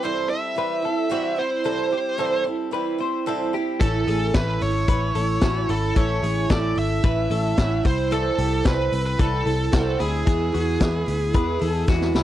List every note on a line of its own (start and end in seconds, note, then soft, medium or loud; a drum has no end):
0.02 0.30 C3 medium
0.02 0.30 E3 medium
0.02 0.31 G3 medium
0.02 0.30 C4 medium
0.02 0.28 E4 medium
0.02 0.54 A4 medium
0.02 0.29 C5 medium
0.29 0.55 G3 soft
0.29 0.56 C4 soft
0.29 0.57 E4 medium
0.29 1.41 E5 medium
0.55 0.84 E3 medium
0.55 0.84 G3 medium
0.55 0.83 C4 medium
0.55 0.81 E4 medium
0.55 0.85 B4 medium
0.82 1.10 G3 soft
0.82 1.10 C4 soft
0.82 1.10 E4 soft
0.82 1.11 A4 medium
1.09 1.38 C3 medium
1.09 1.38 E3 medium
1.09 1.38 G3 medium
1.09 1.36 C4 medium
1.09 1.35 E4 medium
1.09 1.39 F#4 medium
1.36 1.64 G3 soft
1.36 1.65 C4 soft
1.36 1.64 E4 medium
1.36 1.65 E4 medium
1.36 2.43 C5 medium
1.64 1.92 C3 medium
1.64 1.92 E3 medium
1.64 1.92 G3 medium
1.64 1.91 C4 medium
1.64 1.90 E4 medium
1.64 1.92 A4 medium
1.91 2.18 G3 soft
1.91 2.18 C4 soft
1.91 2.19 E4 soft
1.91 2.19 G4 medium
2.18 2.46 C3 medium
2.18 2.46 E3 medium
2.18 2.46 G3 medium
2.18 2.45 C4 medium
2.18 2.44 E4 medium
2.18 2.70 A4 medium
2.45 2.71 G3 soft
2.45 2.73 C4 soft
2.45 2.73 E4 soft
2.71 2.99 E3 medium
2.71 3.00 G3 medium
2.71 2.99 C4 medium
2.71 2.97 E4 medium
2.71 3.00 B4 medium
2.98 3.26 G3 soft
2.98 3.27 C4 soft
2.98 3.26 E4 medium
2.98 3.27 C5 medium
3.26 3.54 C3 medium
3.26 3.54 E3 medium
3.26 3.54 G3 medium
3.26 3.53 C4 medium
3.26 3.52 E4 medium
3.26 3.54 A4 medium
3.53 3.82 G3 soft
3.53 3.81 C4 soft
3.53 3.81 E4 medium
3.53 3.81 G4 medium
3.80 4.03 A1 medium
3.80 4.08 A2 medium
3.80 4.08 E3 medium
3.80 4.09 A3 medium
3.80 4.08 C#4 medium
3.80 4.06 E4 medium
3.80 4.35 A4 medium
3.80 4.07 A4 medium
3.80 kick loud
3.80 closed hi-hat medium
4.07 4.30 A1 medium
4.07 4.34 A3 soft
4.07 4.35 C#4 soft
4.07 4.35 E4 soft
4.07 4.35 G#4 medium
4.07 open hi-hat medium
4.34 4.57 A1 medium
4.34 4.61 A2 medium
4.34 4.62 E3 medium
4.34 4.62 A3 medium
4.34 4.61 C#4 medium
4.34 4.59 E4 medium
4.34 4.85 A4 medium
4.34 4.60 B4 medium
4.34 kick loud
4.34 snare loud
4.34 closed hi-hat medium
4.61 4.84 G#1 medium
4.61 4.88 A3 soft
4.61 4.89 C#4 soft
4.61 4.88 E4 soft
4.61 5.73 C#5 medium
4.61 open hi-hat medium
4.88 5.11 A1 medium
4.88 5.15 E3 medium
4.88 5.16 A3 medium
4.88 5.16 C#4 medium
4.88 5.14 E4 medium
4.88 5.15 B4 medium
4.88 kick loud
4.88 closed hi-hat medium
5.15 5.38 A1 medium
5.15 5.42 C#4 soft
5.15 5.42 E4 soft
5.15 5.43 A4 medium
5.15 open hi-hat medium
5.19 5.41 A3 soft
5.41 5.64 A1 medium
5.41 5.69 A2 medium
5.41 5.69 E3 medium
5.41 5.70 A3 medium
5.41 5.69 C#4 medium
5.41 5.67 E4 medium
5.41 5.69 F#4 medium
5.41 kick loud
5.41 snare loud
5.41 closed hi-hat medium
5.69 5.91 G#1 medium
5.69 5.96 A3 soft
5.69 5.96 C#4 soft
5.69 5.96 E4 soft
5.69 5.96 E4 medium
5.69 5.98 A4 medium
5.69 open hi-hat medium
5.95 6.18 A1 medium
5.95 6.23 A2 medium
5.95 6.23 E3 medium
5.95 6.24 A3 medium
5.95 6.23 C#4 medium
5.95 6.21 E4 medium
5.95 6.23 A4 medium
5.95 6.51 C#5 medium
5.95 kick loud
5.95 closed hi-hat medium
6.22 6.45 A1 medium
6.22 6.50 A3 soft
6.22 6.50 C#4 soft
6.22 6.50 E4 soft
6.22 6.50 G#4 medium
6.22 open hi-hat medium
6.50 6.72 A1 medium
6.50 6.77 A2 medium
6.50 6.77 E3 medium
6.50 6.77 A3 medium
6.50 6.76 C#4 medium
6.50 6.74 E4 medium
6.50 7.01 A4 medium
6.50 6.78 D5 medium
6.50 kick loud
6.50 snare loud
6.50 closed hi-hat medium
6.76 6.99 G#1 medium
6.76 7.04 C#4 soft
6.76 7.03 E4 soft
6.76 7.82 E5 loud
6.76 open hi-hat medium
7.02 7.26 A1 medium
7.02 7.30 E3 medium
7.02 7.31 A3 medium
7.02 7.30 C#4 medium
7.02 7.29 E4 medium
7.02 7.31 B4 medium
7.02 kick loud
7.02 closed hi-hat medium
7.30 7.53 A1 medium
7.30 7.57 A3 soft
7.30 7.58 C#4 soft
7.30 7.57 E4 soft
7.30 7.58 A4 medium
7.30 open hi-hat medium
7.57 7.80 A1 medium
7.57 7.85 A2 medium
7.57 7.85 E3 medium
7.57 7.85 A3 medium
7.57 7.85 C#4 medium
7.57 7.82 E4 medium
7.57 7.85 F#4 medium
7.57 kick loud
7.57 snare loud
7.57 closed hi-hat medium
7.83 8.29 C2 medium
7.83 8.11 G3 soft
7.83 8.11 C4 medium
7.83 8.11 E4 medium
7.83 8.12 E4 medium
7.83 8.13 C5 medium
7.83 kick loud
7.83 open hi-hat medium
8.11 8.38 C3 medium
8.11 8.38 E3 medium
8.11 8.39 G3 medium
8.11 8.38 C4 medium
8.11 8.36 E4 medium
8.11 8.39 A4 medium
8.11 8.67 A4 medium
8.11 closed hi-hat medium
8.38 8.61 C2 medium
8.38 8.64 G3 soft
8.38 8.65 C4 soft
8.38 8.65 E4 soft
8.38 8.66 G4 medium
8.38 open hi-hat medium
8.64 8.88 C2 medium
8.64 8.92 C3 medium
8.64 8.92 E3 medium
8.64 8.92 G3 medium
8.64 8.91 C4 medium
8.64 8.90 E4 medium
8.64 9.16 A4 medium
8.64 9.05 B4 medium
8.64 kick loud
8.64 snare loud
8.64 closed hi-hat medium
8.91 9.15 C2 medium
8.91 9.18 G3 soft
8.91 9.20 C4 soft
8.91 9.19 E4 soft
8.91 open hi-hat medium
9.07 9.20 B4 medium
9.18 9.41 C2 medium
9.18 9.46 E3 medium
9.18 9.46 G3 medium
9.18 9.46 C4 medium
9.18 9.44 E4 medium
9.18 9.97 A4 medium
9.18 9.46 B4 medium
9.18 kick loud
9.18 closed hi-hat medium
9.46 9.68 C2 medium
9.46 9.72 G3 soft
9.46 9.73 C4 soft
9.46 9.73 E4 soft
9.46 9.73 A4 medium
9.46 open hi-hat medium
9.72 9.95 C2 medium
9.72 10.00 C3 medium
9.72 10.00 E3 medium
9.72 10.00 G3 medium
9.72 10.00 C4 medium
9.72 9.98 E4 medium
9.72 9.99 F#4 medium
9.72 kick loud
9.72 snare loud
9.72 closed hi-hat medium
9.99 10.22 D2 medium
9.99 10.27 G3 soft
9.99 10.28 C4 soft
9.99 10.27 E4 medium
9.99 10.26 E4 medium
9.99 11.84 G#4 medium
9.99 open hi-hat medium
10.27 10.49 E2 medium
10.27 10.54 E3 medium
10.27 10.54 G#3 medium
10.27 10.53 B3 medium
10.27 10.51 E4 medium
10.27 10.54 G#4 medium
10.27 kick medium
10.27 closed hi-hat medium
10.52 10.76 E2 medium
10.52 10.80 G#3 soft
10.52 10.81 B3 soft
10.52 10.80 E4 soft
10.52 10.81 F#4 medium
10.52 open hi-hat medium
10.80 11.03 E2 loud
10.80 11.07 E3 medium
10.80 11.08 G#3 medium
10.80 11.07 B3 medium
10.80 11.05 E4 medium
10.80 11.31 G#4 medium
10.80 kick loud
10.80 snare loud
10.80 closed hi-hat medium
11.06 11.35 D2 medium
11.06 11.33 G#3 soft
11.06 11.34 B3 medium
11.06 11.34 E4 medium
11.06 open hi-hat medium
11.33 11.57 E2 medium
11.33 11.61 E3 medium
11.33 11.61 G#3 medium
11.33 11.60 B3 medium
11.33 11.58 E4 medium
11.33 11.61 B4 medium
11.33 kick loud
11.33 closed hi-hat medium
11.59 11.84 E2 medium
11.59 11.87 G#3 soft
11.59 11.88 B3 soft
11.59 11.87 E4 medium
11.59 11.88 A4 medium
11.59 open hi-hat medium
11.88 12.10 E2 medium
11.88 12.15 E3 medium
11.88 12.15 G#3 medium
11.88 12.14 B3 medium
11.88 12.13 E4 medium
11.88 12.16 F#4 medium
11.88 kick loud
11.88 snare soft
12.01 snare medium
12.14 12.23 C#2 medium
12.14 12.23 G#3 soft
12.14 12.23 B3 medium
12.14 12.23 E4 medium
12.14 snare medium